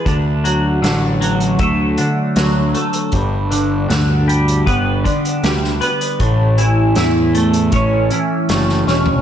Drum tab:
HH |x-x-x-xxx-x-x-xx|x-x-x-xxx-xxx-xx|x-x-x-xxx-x-x---|
SD |----o-------o---|----o-------oo--|----o-------ooo-|
FT |----------------|----------------|---------------o|
BD |o-------o-------|o-------o-o-----|o-------o-------|